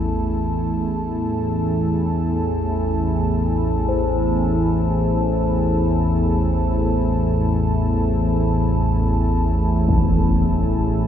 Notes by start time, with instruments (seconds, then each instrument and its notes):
Already playing: synth drone A1 E2, analog synth pad A3 E4 A4 A5, singing bowl A4
3.89 singing bowl C5
9.89 impact